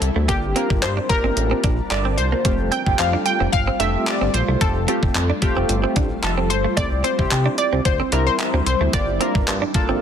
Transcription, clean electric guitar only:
0.02 muted clean electric guitar stroke
0.16 A3
0.29 A#3
0.56 C4
0.70 muted clean electric guitar stroke
0.97 D4
1.10 muted clean electric guitar stroke
1.24 C4
1.37 muted clean electric guitar stroke
1.51 C4
1.64 D4
2.05 C4
2.18 muted clean electric guitar stroke
2.32 A#3
2.45 A3
2.72 C4
2.86 muted clean electric guitar stroke
3.13 D4
3.26 muted clean electric guitar stroke
3.40 C4
3.53 muted clean electric guitar stroke
3.67 C4
3.80 D4
4.21 C4
4.34 muted clean electric guitar stroke
4.48 A3
4.61 A3
4.88 C4
5.03 muted clean electric guitar stroke
5.30 D4
5.42 muted clean electric guitar stroke
5.57 C4
5.69 muted clean electric guitar stroke
5.84 C4
5.96 D4
6.38 C4
6.50 muted clean electric guitar stroke
6.64 A3
6.77 A3
7.04 C4
7.19 muted clean electric guitar stroke
7.46 D4
7.58 muted clean electric guitar stroke
7.73 C4
7.85 muted clean electric guitar stroke
8.00 C4
8.12 D4
8.54 C4
8.67 muted clean electric guitar stroke
8.81 A3
8.93 A#3
9.21 C4
9.35 muted clean electric guitar stroke
9.62 D4
9.75 muted clean electric guitar stroke
9.89 C4

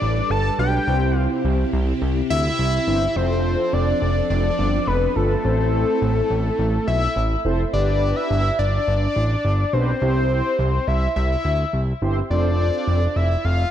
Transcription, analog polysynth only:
0.59 B3 D4 G4 B4
0.87 C4 E4 G4 C5
2.88 C4 E4 G4 C5
3.16 C4 F4 A4 C5
5.16 C4 F4 A4 B4
5.45 C4 E4 A4 C5
7.45 C4 E4 A4 C5
7.73 B3 D4 G4 B4
9.73 B3 D4 G4 B4
10.02 C4 E4 G4 C5
12.02 C4 E4 G4 C5
12.30 C4 F4 A4 C5

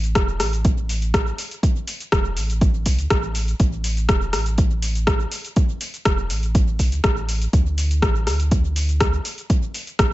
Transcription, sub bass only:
Already playing: A1
0.16 E1
0.40 A1
2.12 E1
2.37 A1
2.86 C2
2.99 D2
3.11 A1
3.60 A1
4.09 E1
4.33 A1
6.06 E1
6.30 A1
6.79 C2
6.92 D2
7.04 A1
7.53 D2
8.02 A1
8.27 D2
9.99 A1

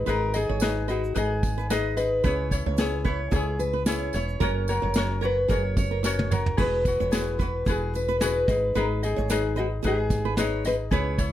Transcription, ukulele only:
0.07 D#4 G#4 B4 D#5
0.34 D#4 G#4 D#5
0.61 D#4 G#4 B4 D#5
0.88 D#4 G#4 D#5
1.15 D#4 G#4 B4 D#5
1.70 D#4 G#4 B4 D#5
1.97 D#4 G#4 D#5
2.25 C#4 E4 G#4 C#5
2.52 C#4 E4 C#5
2.79 C#4 E4 G#4 C#5
3.06 C#4 E4 C#5
3.33 C#4 E4 G#4 C#5
3.87 C#4 E4 G#4 C#5
4.14 C#4 E4 C#5
4.41 C#4 F#4 A#4 C#5
4.69 C#4 F#4 C#5
4.96 C#4 F#4 A#4 C#5
5.22 C#4 F#4 C#5
5.49 C#4 F#4 A#4 C#5
6.04 C#4 F#4 A#4 C#5
6.31 C#4 F#4 C#5
6.57 E4 F#4 G#4 B4
6.85 E4 F#4 B4
7.12 E4 F#4 G#4 B4
7.40 E4 F#4 B4
7.67 E4 F#4 G#4 B4
8.21 E4 F#4 G#4 B4
8.48 D#4 G#4 D#5
8.75 D#4 G#4 B4 D#5
9.03 D#4 G#4 D#5
9.30 D#4 G#4 B4 D#5
9.57 D#4 G#4 D#5
9.84 D#4 G#4 B4 D#5
10.38 D#4 G#4 B4 D#5
10.65 D#4 G#4 D#5
10.91 C#4 E4 G#4 C#5
11.19 C#4 E4 C#5

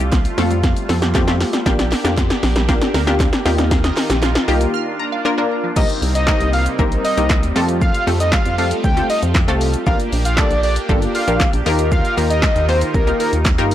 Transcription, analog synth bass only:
0.00 C2
0.38 F2
0.89 F2
1.66 A#1
2.05 F2
2.43 A#1
2.94 D2
3.46 D#2
4.10 A#1
4.48 C2
5.76 C2
6.02 C2
6.40 C2
6.79 A#1
7.17 C2
7.43 D#2
7.56 F2
8.07 F2
8.46 F2
8.84 D2
9.23 F2
9.48 C2
9.87 A#1
10.12 A#1
10.51 A#1
10.89 G1
11.28 A#1
11.53 A#1
11.66 D#2
12.17 D#2
12.56 D#2
12.94 C2
13.33 D#2
13.58 G2

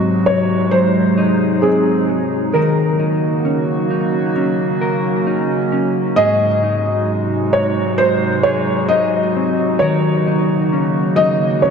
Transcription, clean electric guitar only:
Already playing: G#2 F#3 C4 D#4
0.72 F#3
1.18 D#4
1.63 C4
2.09 F#3
2.54 D#3 A#4
2.99 D#4
3.45 C#4
3.91 D#4
4.36 C#4
4.81 A#4
5.27 D#4
5.72 C#4
6.17 G#2 G#4
6.63 D#4
7.54 D#4
8.45 G#4
8.91 D#4
9.36 C4
9.82 D#3 A#4
10.27 D#4
10.73 C#4
11.18 D#4
11.64 C#4

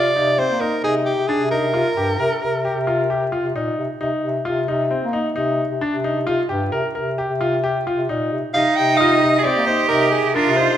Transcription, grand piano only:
0.16 D#4
0.38 C4
0.61 D#4
0.84 D#4
1.29 D4
1.51 D#4
1.74 F4
1.97 G4
2.20 A#4
2.42 A#4
2.65 G4
2.87 F4
3.10 G4
3.32 F4
3.56 D#4
4.01 D#4
4.45 F4
4.68 D#4
4.91 C4
5.13 D#4
5.36 D#4
5.81 D4
6.04 D#4
6.27 F4
6.49 G4
6.72 A#4
6.95 A#4
7.18 G4
7.41 F4
7.64 G4
7.87 F4
8.09 D#4
8.54 D#4
9.00 F4
9.23 D#4
9.45 C4
9.67 D#4
9.91 D#4
10.36 D4
10.59 D#4

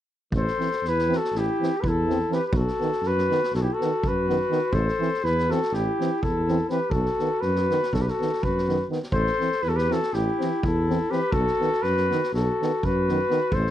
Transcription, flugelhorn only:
0.37 C5
0.88 B4
1.17 A4
1.38 G4
1.81 B4
1.88 A4
2.33 B4
2.46 B4
2.57 A4
3.07 B4
3.55 A4
3.62 G4
3.73 A4
4.08 B4
4.72 C5
5.25 B4
5.51 A4
5.74 G4
6.23 A4
6.70 B4
6.90 A4
7.41 B4
7.93 A4
8.01 B4
8.10 A4
8.43 B4
9.13 C5
9.63 B4
9.69 A4
9.76 B4
9.92 A4
10.14 G4
10.65 A4
11.11 B4
11.32 A4
11.82 B4
12.34 A4
12.85 B4
13.54 C5

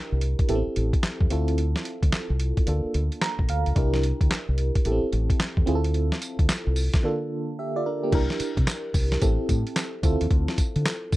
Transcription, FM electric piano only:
Already playing: D4 E4 G4 A#4
0.49 B3 E4 G4 A4
0.55 C4
1.30 C4 E4 F4 A4
2.67 A#3 D4 F4 A4
3.22 A#5
3.50 F5
3.75 D4 E4 G4 A#4
4.85 B3 E4 G4 A4
4.92 C4
5.66 C4 E4 F4 G#4
5.75 A4
7.03 D3 A#3 D4 F4 A4
7.59 G4 E5
7.76 F4 D5
7.86 D4 A#4
8.03 A#3 G4
8.12 D4 E4 G4 A#4
9.22 C4 E4 G4 A4
10.03 C4 E4 F4 A4

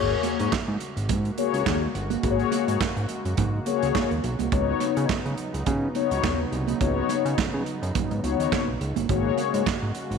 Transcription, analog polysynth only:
Already playing: A#3 F#4 G#4 C#5
1.38 A#3 F#4 G#4 C#5
2.23 A#3 F#4 G#4 B4
2.31 C#5
3.66 A#3 F#4 G#4 C#5
4.52 B3 D#4 F#4 C#5
5.95 B3 D#4 F#4 C#5
6.80 B3 D#4 F#4 C#5
8.23 B3 D#4 F#4 C#5
9.09 A#3 F#4 G#4 C#5

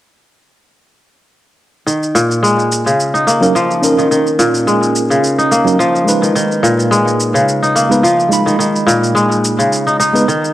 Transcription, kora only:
1.86 D#3
2.15 A#2
2.43 G#3
2.86 C#3
3.14 D#4
3.27 A#3
3.55 F3
3.98 D#3
4.11 D#3
4.39 A#2
4.67 G#3
5.10 C#3
5.38 D#4
5.51 A#3
5.79 F3
6.22 D#3
6.35 D#3
6.63 A#2
6.91 G#3
7.34 C#3
7.63 D#4
7.75 A#3
8.03 F3
8.46 D#3
8.59 D#3
8.87 A#2
9.15 G#3
9.59 C#3
9.87 D#4
10.00 D#4
10.28 D#3

